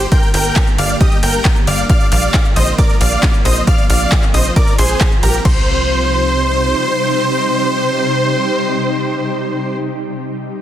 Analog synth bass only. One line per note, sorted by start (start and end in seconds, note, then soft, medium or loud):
0.34 0.51 G1 loud
0.78 0.96 G1 loud
1.23 1.40 G1 loud
1.67 1.85 G1 loud
2.12 2.29 A#1 loud
2.56 2.74 A#1 loud
3.01 3.18 A#1 loud
3.45 3.62 A#1 loud
3.90 4.07 A#1 loud
4.34 4.51 A#1 loud
4.79 4.96 A#1 loud
5.23 5.40 A#1 medium
5.45 6.74 C2 loud